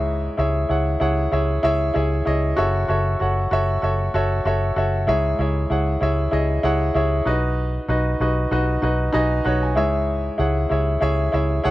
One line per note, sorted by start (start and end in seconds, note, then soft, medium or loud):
0.00 0.28 C#2 medium
0.00 0.66 G#2 medium
0.00 0.27 E4 medium
0.00 0.27 G#4 medium
0.00 0.28 C#5 medium
0.00 0.28 E5 medium
0.37 0.64 C#2 medium
0.37 0.63 E4 medium
0.37 0.64 G#4 medium
0.37 0.64 C#5 medium
0.37 0.64 E5 medium
0.69 0.96 C#2 medium
0.69 0.95 E4 medium
0.69 0.95 G#4 medium
0.69 0.95 C#5 medium
0.69 0.96 F#5 medium
1.00 1.27 C#2 medium
1.00 1.26 E4 medium
1.00 1.26 G#4 medium
1.00 1.27 C#5 medium
1.00 1.27 F#5 medium
1.32 1.58 C#2 medium
1.32 1.57 E4 medium
1.32 1.58 G#4 medium
1.32 1.58 C#5 medium
1.32 1.58 E5 medium
1.63 1.89 C#2 medium
1.63 1.89 E4 medium
1.63 1.89 G#4 medium
1.63 1.89 C#5 medium
1.63 1.90 E5 loud
1.94 2.21 C#2 medium
1.94 2.20 E4 medium
1.94 2.20 G#4 medium
1.94 2.20 C#5 medium
1.94 2.21 E5 medium
2.25 2.52 C#2 medium
2.25 2.51 E4 medium
2.25 2.51 G#4 medium
2.25 2.52 C#5 medium
2.25 2.52 D#5 medium
2.56 2.84 F#1 medium
2.56 3.47 C#3 medium
2.56 2.82 F#4 medium
2.56 2.83 A4 medium
2.56 2.83 C#5 medium
2.56 2.83 E5 medium
2.88 3.15 F#1 medium
2.88 3.14 F#4 medium
2.88 3.14 A4 medium
2.88 3.15 C#5 medium
2.88 3.15 E5 medium
3.20 3.46 F#1 medium
3.20 3.45 F#4 medium
3.20 3.46 A4 medium
3.20 3.46 C#5 medium
3.20 3.46 F#5 medium
3.51 3.77 F#1 medium
3.51 3.77 F#4 medium
3.51 3.77 A4 medium
3.51 3.77 C#5 medium
3.51 3.78 E5 medium
3.82 4.08 F#1 medium
3.82 4.08 F#4 medium
3.82 4.08 A4 medium
3.82 4.08 C#5 medium
3.82 4.09 E5 medium
4.14 4.40 F#1 medium
4.14 4.39 F#4 medium
4.14 4.40 A4 medium
4.14 4.40 C#5 medium
4.14 4.40 E5 medium
4.45 4.71 F#1 medium
4.45 4.71 F#4 medium
4.45 4.71 A4 medium
4.45 4.71 C#5 medium
4.45 4.72 E5 medium
4.76 5.09 F#1 medium
4.76 5.02 F#4 medium
4.76 5.02 A4 medium
4.76 5.02 C#5 medium
4.76 5.03 E5 medium
5.07 5.33 C#2 medium
5.07 5.98 G#2 medium
5.07 5.33 E4 medium
5.07 5.33 G#4 medium
5.07 5.33 C#5 medium
5.07 5.34 E5 medium
5.39 5.65 C#2 medium
5.39 5.64 E4 medium
5.39 5.65 G#4 medium
5.39 5.65 C#5 medium
5.39 5.65 E5 medium
5.70 5.96 C#2 medium
5.70 5.96 E4 medium
5.70 5.96 G#4 medium
5.70 5.96 C#5 medium
5.70 5.96 F#5 medium
6.01 6.27 C#2 medium
6.01 6.27 E4 medium
6.01 6.27 G#4 medium
6.01 6.27 C#5 medium
6.01 6.28 E5 medium
6.31 6.58 C#2 medium
6.31 6.57 E4 medium
6.31 6.58 G#4 medium
6.31 6.58 C#5 medium
6.31 6.58 D#5 medium
6.63 6.90 C#2 medium
6.63 6.89 E4 medium
6.63 6.89 G#4 medium
6.63 6.90 C#5 medium
6.63 6.90 F#5 medium
6.95 7.21 C#2 medium
6.95 7.20 E4 medium
6.95 7.21 G#4 medium
6.95 7.21 C#5 medium
6.95 7.21 E5 medium
7.25 7.78 B1 medium
7.25 7.78 D#4 medium
7.25 7.78 F#4 medium
7.25 7.78 B4 medium
7.25 7.78 D#5 medium
7.88 8.15 B1 medium
7.88 8.14 D#4 medium
7.88 8.14 F#4 medium
7.88 8.15 B4 medium
7.88 8.15 D#5 medium
8.20 8.46 B1 medium
8.20 8.46 D#4 medium
8.20 8.46 F#4 medium
8.20 8.46 B4 medium
8.20 8.47 D#5 medium
8.51 8.77 B1 medium
8.51 8.77 D#4 medium
8.51 8.77 F#4 medium
8.51 8.77 B4 medium
8.51 8.78 D#5 medium
8.82 9.08 B1 medium
8.82 9.08 D#4 medium
8.82 9.08 F#4 medium
8.82 9.09 B4 medium
8.82 9.09 D#5 medium
9.13 9.40 B1 medium
9.13 9.39 D#4 medium
9.13 9.39 F#4 medium
9.13 9.39 B4 medium
9.13 9.40 D#5 medium
9.13 9.43 G#5 medium
9.45 9.77 B1 medium
9.45 9.71 D#4 medium
9.45 9.71 F#4 medium
9.45 9.71 B4 medium
9.45 9.71 C#5 medium
9.45 9.62 F#5 medium
9.63 10.05 G#5 medium
9.76 10.28 C#2 medium
9.76 10.67 G#2 medium
9.76 10.28 E4 medium
9.76 10.28 G#4 medium
9.76 10.28 C#5 medium
9.76 10.29 E5 medium
10.38 10.65 C#2 medium
10.38 10.64 E4 medium
10.38 10.64 G#4 medium
10.38 10.65 C#5 medium
10.38 10.65 F#5 medium
10.69 10.97 C#2 medium
10.69 10.95 E4 medium
10.69 10.96 G#4 medium
10.69 10.96 C#5 medium
10.69 10.97 E5 medium
11.01 11.28 C#2 medium
11.01 11.27 E4 medium
11.01 11.27 G#4 medium
11.01 11.27 C#5 medium
11.01 11.28 E5 medium
11.32 11.59 C#2 medium
11.32 11.58 E4 medium
11.32 11.59 G#4 medium
11.32 11.59 C#5 medium
11.32 11.59 E5 medium
11.64 11.71 C#2 medium
11.64 11.71 E4 medium
11.64 11.71 G#4 medium
11.64 11.71 C#5 medium
11.64 11.71 F#5 loud